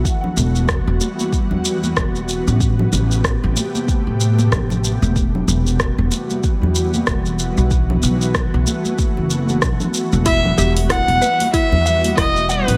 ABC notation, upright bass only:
X:1
M:4/4
L:1/16
Q:"Swing 16ths" 1/4=94
K:Em
V:1 name="Upright bass" clef=bass
z2 E,,,3 E,,, z3 E,,3 E,,,3 A,,,- | A,,,2 A,,,3 A,,, z3 A,,3 A,,,3 E,,,- | E,,,2 E,,,3 E,,, z3 E,,3 E,,,3 B,,,- | B,,,2 B,,,3 B,,, z3 F,,,3 B,,, z2 E,,,- |
E,,,2 E,,,3 E,,, z3 E,,3 E,,,3 A,,, |]